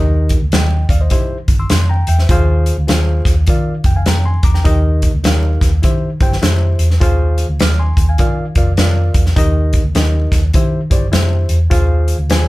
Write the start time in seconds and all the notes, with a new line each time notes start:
Already playing: D#2 D#3 D#4 G4 A#4 D#5
0.29 kick, closed hi-hat
0.41 D2
0.52 D#2 D#5 G5, snare, closed hi-hat
0.89 D#2 D5 F5, kick, closed hi-hat
1.01 C5 D#5
1.10 D#3 E4 G4 C5 E5, kick, closed hi-hat
1.48 G1, kick, closed hi-hat
1.59 C6 E6
1.70 F2 C6, snare, closed hi-hat
1.89 G5 A#5
2.07 E2 E5 G5, closed hi-hat
2.19 C5 E5, snare
2.29 D#2 D#3 F4 G#4 C5 F5, kick, closed hi-hat
2.66 closed hi-hat
2.77 D2
2.88 D#2 F4 G#4 C5 F5, snare, closed hi-hat
3.25 D#2, kick, snare, closed hi-hat
3.47 D#3 F4 A#4 D5 F5, kick, closed hi-hat
3.84 F1 G5, kick, closed hi-hat
3.96 F5 G#5
4.06 F2 G5 A#5, snare, closed hi-hat
4.25 G#5 C6
4.43 E2 A#5 D6, kick, closed hi-hat
4.54 G5 A#5, snare
4.64 D#2 D#3 D#4 G4 A#4 D#5, kick, closed hi-hat
5.02 kick, closed hi-hat
5.14 D2
5.24 D#2 D#4 G4 A#4 F5, snare, closed hi-hat
5.61 D#2, kick, snare, closed hi-hat
5.82 D#3 E4 G4 C5 E5, kick, closed hi-hat
6.20 G1 E4 G4 C5 G5, kick, closed hi-hat
6.32 snare
6.42 F2 E4 G4 C5 E5, snare, closed hi-hat
6.79 E2, closed hi-hat
6.91 snare
7.00 D#2 D#3 F4 G#4 C5 F5, kick, closed hi-hat
7.38 closed hi-hat
7.49 D2
7.60 D#2 D6 F6, snare, closed hi-hat
7.79 G#5 C6
7.97 D#2, kick, closed hi-hat
8.09 F5 G#5
8.18 D#3 F4 A#4 D5 F5, kick, closed hi-hat
8.55 F1 F4 A#4 D5 F5, kick, closed hi-hat
8.77 F2 F4 A#4 D5 F5, snare, closed hi-hat
9.14 E2, kick, closed hi-hat
9.26 snare
9.36 D#2 D#3 D#4 G4 A#4 D#5, kick, closed hi-hat
9.73 kick, closed hi-hat
9.84 D2
9.94 D#2 D#4 G4 A#4 D#5, snare, closed hi-hat
10.32 D#2, kick, snare, closed hi-hat
10.53 D#3 E4 G4 C5 E5, kick, closed hi-hat
10.90 G1 E4 G4 C5 D5, kick, closed hi-hat
11.12 F2 E4 G4 C5 E5, snare, closed hi-hat
11.49 E2, closed hi-hat
11.70 D#2 D#3 F4 G#4 C5 F5, kick, closed hi-hat
12.08 closed hi-hat
12.19 D2
12.29 D#2 F4 G#4 C5 G#5, snare, closed hi-hat